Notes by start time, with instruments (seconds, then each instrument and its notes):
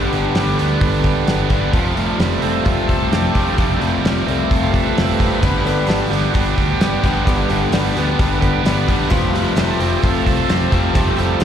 Already playing: distorted electric guitar G2 G3 B3 D4 G4, overdriven electric guitar G2 D3 G3 B3 D4, tonewheel organ D3 G3 B3 G4
0.10 fingered electric bass G1, distorted electric guitar D3, tonewheel organ F#4, open hi-hat
0.14 tonewheel organ G4
0.35 fingered electric bass G1, distorted electric guitar G3, snare, open hi-hat
0.58 fingered electric bass D2, distorted electric guitar B3, open hi-hat
0.81 fingered electric bass G1, distorted electric guitar D4, kick, open hi-hat
1.03 distorted electric guitar G4, kick, open hi-hat
1.26 fingered electric bass G1, distorted electric guitar B3, snare, open hi-hat
1.49 overdriven electric guitar G2 D3 G3 B3 D4, distorted electric guitar G3, kick, open hi-hat
1.72 fingered electric bass F1, overdriven electric guitar F2 C3 F3 A3 C4, distorted electric guitar F3, kick, open hi-hat
1.95 tonewheel organ F3 G3 A3, distorted electric guitar G3, open hi-hat
2.19 fingered electric bass F1, distorted electric guitar G3, snare, open hi-hat
2.38 distorted electric guitar C4, tonewheel organ A4 B4, open hi-hat
2.42 fingered electric bass F1, tonewheel organ C5
2.64 fingered electric bass F1, distorted electric guitar F4, tonewheel organ A4 C5, kick, open hi-hat
2.88 fingered electric bass C2, distorted electric guitar A4, tonewheel organ A4 C5, kick, open hi-hat
3.11 fingered electric bass F2, distorted electric guitar C4, tonewheel organ D4 G4, snare, open hi-hat
3.33 fingered electric bass F1, overdriven electric guitar F2 C3 F3 A3 C4, distorted electric guitar G3, tonewheel organ D4 G4, kick, open hi-hat
3.57 fingered electric bass F1, overdriven electric guitar F2 C3 F3 A3 C4, distorted electric guitar F3, tonewheel organ D4 G4, kick, open hi-hat
3.79 fingered electric bass F1, distorted electric guitar G3, tonewheel organ F#4, open hi-hat
3.83 tonewheel organ G4
4.04 fingered electric bass F1, distorted electric guitar G3, snare, open hi-hat
4.26 fingered electric bass C2, tonewheel organ F3 G3 A3, distorted electric guitar C4, open hi-hat
4.51 fingered electric bass F1, distorted electric guitar F4, kick, open hi-hat
4.70 tonewheel organ A#4
4.74 distorted electric guitar A4, tonewheel organ B4, kick, open hi-hat
4.97 fingered electric bass F1, distorted electric guitar C4, snare, open hi-hat
5.18 overdriven electric guitar F2 C3 F3 A3 C4, distorted electric guitar G3, kick, open hi-hat
5.41 fingered electric bass G1, distorted electric guitar G2, overdriven electric guitar G2 D3 G3 B3 D4, steel-string acoustic guitar G2 D3 G3 B3 D4 G4, kick, open hi-hat
5.64 distorted electric guitar D3, tonewheel organ D3 G3 B3 B4, steel-string acoustic guitar G3 B3 D4 G4, open hi-hat
5.87 fingered electric bass G1, steel-string acoustic guitar G2 D3 G3 B3 D4 G4, distorted electric guitar G3, tonewheel organ A4, snare, open hi-hat
6.10 fingered electric bass G1, steel-string acoustic guitar G3 B3 D4 G4, distorted electric guitar B3, tonewheel organ G4, open hi-hat
6.30 steel-string acoustic guitar G3, distorted electric guitar D4, tonewheel organ F#4 G4
6.35 fingered electric bass G1, steel-string acoustic guitar B3 D4 G4, kick, open hi-hat
6.56 fingered electric bass D2, distorted electric guitar G4, kick, open hi-hat
6.80 fingered electric bass G2, steel-string acoustic guitar G2 D3 G3 B3 D4 G4, distorted electric guitar B3, snare, open hi-hat
7.02 fingered electric bass G1, overdriven electric guitar G2 D3 G3 B3 D4, distorted electric guitar G3, steel-string acoustic guitar G3 B3 D4 G4, kick, open hi-hat
7.25 fingered electric bass G1, distorted electric guitar G2, overdriven electric guitar G2 D3 G3 B3 D4, steel-string acoustic guitar G2 D3 G3 B3 D4 G4, tonewheel organ D3 G3 B3, kick, open hi-hat
7.49 fingered electric bass G1, distorted electric guitar D3, steel-string acoustic guitar G3 B3 D4 G4, open hi-hat
7.72 fingered electric bass G1, steel-string acoustic guitar G2 D3 G3 B3 D4 G4, distorted electric guitar G3, snare, open hi-hat
7.96 fingered electric bass D2, steel-string acoustic guitar G3 B3 D4 G4, distorted electric guitar B3, open hi-hat
8.19 fingered electric bass G1, steel-string acoustic guitar G3 B3 D4 G4, distorted electric guitar D4, kick, open hi-hat
8.38 tonewheel organ D3 G3 A#4 B4, distorted electric guitar G4
8.42 tonewheel organ B3, kick, open hi-hat
8.63 fingered electric bass G1, steel-string acoustic guitar G2 D3 G3 B3 D4 G4, distorted electric guitar B3, snare, open hi-hat
8.86 overdriven electric guitar G2 D3 G3 B3 D4, distorted electric guitar G3, steel-string acoustic guitar G3 B3 D4 G4, kick, open hi-hat
9.09 fingered electric bass F1, overdriven electric guitar F2 C3 F3 A3, steel-string acoustic guitar F3 A3 C4 F4 G4, distorted electric guitar F3, tonewheel organ F3 G3 A3, kick, open hi-hat
9.13 overdriven electric guitar C4
9.33 distorted electric guitar G3, steel-string acoustic guitar C4 F4 G4, tonewheel organ B4, open hi-hat
9.56 fingered electric bass F1, steel-string acoustic guitar F3 A3 C4 F4 G4, distorted electric guitar G3, tonewheel organ A4, snare, open hi-hat
9.79 fingered electric bass F1, distorted electric guitar C4, steel-string acoustic guitar C4 F4 G4, tonewheel organ G4, open hi-hat
9.99 steel-string acoustic guitar A3, distorted electric guitar F4, tonewheel organ G#4
10.03 fingered electric bass F1, steel-string acoustic guitar C4 F4 G4, tonewheel organ A4, kick, open hi-hat
10.26 fingered electric bass C2, distorted electric guitar A4, kick, open hi-hat
10.49 fingered electric bass F2, steel-string acoustic guitar F3 A3 C4 F4 G4, distorted electric guitar C4, snare, open hi-hat
10.71 fingered electric bass F1, overdriven electric guitar F2 C3 F3 A3 C4, distorted electric guitar G3, steel-string acoustic guitar C4 F4 G4, kick, open hi-hat
10.93 fingered electric bass F1, overdriven electric guitar F2 C3 F3 A3 C4, tonewheel organ F3 G3 A3, steel-string acoustic guitar F3 A3 C4 F4 G4, distorted electric guitar F3, kick, open hi-hat
11.17 fingered electric bass F1, distorted electric guitar G3, steel-string acoustic guitar C4 F4 G4, open hi-hat
11.40 steel-string acoustic guitar F3 A3 C4 F4, distorted electric guitar G3